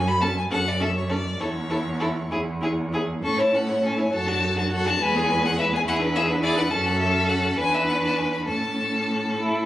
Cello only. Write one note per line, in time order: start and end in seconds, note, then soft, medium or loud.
0.00 0.40 F#2 loud
0.51 1.29 F#2 medium
1.40 2.20 E2 medium
2.32 3.13 E2 medium
3.24 4.02 A2 medium
4.13 4.90 F#2 medium
5.00 5.77 E2 loud
5.87 6.61 E2 loud
6.71 7.54 F#2 loud
7.57 8.48 E2 medium
8.47 9.66 A2 medium